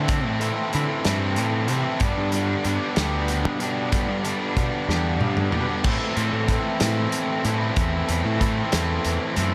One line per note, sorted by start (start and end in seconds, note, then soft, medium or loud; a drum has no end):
0.00 0.26 D3 medium
0.08 0.39 A2 medium
0.08 0.39 E3 medium
0.08 0.40 A3 medium
0.08 0.39 C4 medium
0.08 0.40 E4 medium
0.08 0.40 A4 loud
0.08 kick loud
0.08 closed hi-hat medium
0.26 0.50 A2 medium
0.40 0.71 A2 medium
0.40 0.72 E3 medium
0.40 0.73 A3 medium
0.40 0.72 C4 medium
0.40 0.72 E4 medium
0.40 0.73 A4 medium
0.40 closed hi-hat medium
0.72 1.04 A2 medium
0.72 0.86 D3 medium
0.72 1.04 E3 medium
0.72 1.05 A3 medium
0.72 1.04 C4 medium
0.72 1.05 E4 medium
0.72 1.05 A4 medium
0.72 closed hi-hat medium
1.05 1.38 G2 loud
1.05 1.67 A2 medium
1.05 1.67 E3 medium
1.05 1.69 A3 medium
1.05 1.67 C4 loud
1.05 1.68 E4 loud
1.05 1.68 A4 medium
1.05 snare loud
1.05 closed hi-hat medium
1.36 1.70 A2 medium
1.36 closed hi-hat medium
1.68 1.99 A2 medium
1.68 1.82 C3 medium
1.68 1.99 E3 medium
1.68 2.00 A3 medium
1.68 1.99 C4 medium
1.68 1.99 E4 medium
1.68 1.99 A4 loud
1.68 closed hi-hat medium
2.00 2.13 G2 loud
2.00 2.32 G2 medium
2.00 2.32 D3 medium
2.00 2.33 G3 medium
2.00 2.33 B3 medium
2.00 2.34 D4 medium
2.00 2.34 G4 medium
2.00 kick loud
2.00 closed hi-hat medium
2.18 2.55 G2 medium
2.32 2.64 G2 medium
2.32 2.64 D3 medium
2.32 2.64 G3 medium
2.32 2.65 B3 medium
2.32 2.65 D4 medium
2.32 2.66 G4 medium
2.32 closed hi-hat medium
2.64 2.95 G2 medium
2.64 2.78 G2 medium
2.64 2.95 D3 medium
2.64 2.96 G3 medium
2.64 2.96 B3 medium
2.64 2.96 D4 medium
2.64 2.97 G4 medium
2.64 closed hi-hat medium
2.96 3.45 D2 loud
2.96 3.58 G2 medium
2.96 3.59 D3 medium
2.96 3.60 G3 medium
2.96 3.59 B3 loud
2.96 3.59 D4 loud
2.96 3.61 G4 loud
2.96 snare loud
2.96 closed hi-hat medium
3.28 closed hi-hat medium
3.45 4.10 B2 medium
3.60 3.91 G2 medium
3.60 3.91 D3 medium
3.60 3.92 G3 medium
3.60 3.92 B3 medium
3.60 3.92 D4 medium
3.60 3.92 G4 medium
3.60 closed hi-hat medium
3.92 4.22 G2 loud
3.92 4.22 D3 medium
3.92 4.23 G3 medium
3.92 4.23 B3 loud
3.92 4.23 D4 medium
3.92 4.24 G4 loud
3.92 kick loud
3.92 closed hi-hat medium
4.10 4.34 G2 medium
4.23 4.54 G2 medium
4.23 4.54 D3 medium
4.23 4.55 G3 medium
4.23 4.55 B3 medium
4.23 4.55 D4 medium
4.23 4.56 G4 medium
4.23 closed hi-hat medium
4.55 4.87 G2 medium
4.55 4.69 B2 medium
4.55 4.87 D3 medium
4.55 4.87 G3 medium
4.55 4.87 B3 medium
4.55 4.88 D4 medium
4.55 4.88 G4 medium
4.55 kick medium
4.55 closed hi-hat medium
4.88 5.21 E2 loud
4.88 5.50 G2 medium
4.88 5.50 D3 medium
4.88 5.51 G3 medium
4.88 5.51 B3 medium
4.88 5.51 D4 loud
4.88 5.51 G4 loud
4.88 snare medium
5.21 5.54 G2 medium
5.21 high tom medium
5.37 mid tom medium
5.51 5.82 G2 medium
5.51 5.65 B2 medium
5.51 5.82 D3 medium
5.51 5.83 G3 medium
5.51 5.83 B3 medium
5.51 5.83 D4 medium
5.51 5.83 G4 medium
5.51 mid tom medium
5.83 6.15 A2 medium
5.83 5.97 A2 medium
5.83 6.15 E3 medium
5.83 6.17 A3 loud
5.83 6.16 C4 medium
5.83 6.16 E4 loud
5.83 6.16 A4 loud
5.83 kick loud
5.83 crash loud
6.15 6.48 A2 medium
6.15 6.29 A2 medium
6.15 6.48 E3 medium
6.15 6.48 A3 medium
6.15 6.49 C4 medium
6.15 6.49 E4 medium
6.15 6.49 A4 medium
6.15 closed hi-hat medium
6.33 6.58 A2 medium
6.48 6.79 A2 medium
6.48 6.79 E3 medium
6.48 6.79 A3 medium
6.48 6.79 C4 medium
6.48 6.80 E4 medium
6.48 6.80 A4 medium
6.48 kick medium
6.48 closed hi-hat medium
6.80 7.43 A2 loud
6.80 7.06 A2 medium
6.80 7.43 E3 loud
6.80 7.44 A3 medium
6.80 7.44 C4 loud
6.80 7.44 E4 loud
6.80 7.45 A4 loud
6.80 snare loud
6.80 closed hi-hat medium
7.12 closed hi-hat medium
7.44 7.74 A2 medium
7.44 7.70 A2 medium
7.44 7.75 E3 medium
7.44 7.76 A3 medium
7.44 7.76 C4 medium
7.44 7.76 E4 medium
7.44 7.76 A4 medium
7.44 closed hi-hat medium
7.76 8.01 E2 medium
7.76 8.07 A2 medium
7.76 8.08 E3 medium
7.76 8.09 A3 loud
7.76 8.08 C4 medium
7.76 8.08 E4 medium
7.76 8.09 A4 loud
7.76 kick loud
7.76 closed hi-hat medium
8.08 8.21 E2 medium
8.08 8.39 A2 medium
8.08 8.39 E3 medium
8.08 8.40 A3 medium
8.08 8.40 C4 medium
8.08 8.40 E4 medium
8.08 8.41 A4 medium
8.08 closed hi-hat medium
8.25 8.62 A2 medium
8.40 8.71 A2 medium
8.40 8.71 E3 medium
8.40 8.72 A3 medium
8.40 8.72 C4 medium
8.40 8.73 E4 medium
8.40 8.73 A4 loud
8.40 kick medium
8.40 closed hi-hat medium
8.72 8.98 E2 medium
8.72 9.35 A2 loud
8.72 9.35 E3 loud
8.72 9.36 A3 medium
8.72 9.36 C4 loud
8.72 9.36 E4 loud
8.72 9.36 A4 loud
8.72 snare loud
8.72 closed hi-hat loud
9.05 9.18 E2 medium
9.05 closed hi-hat medium
9.36 9.54 F#2 medium
9.36 9.54 A2 medium
9.36 9.54 E3 medium
9.36 9.54 A3 medium
9.36 9.54 C4 medium
9.36 9.54 E4 medium
9.36 9.54 A4 medium
9.36 closed hi-hat medium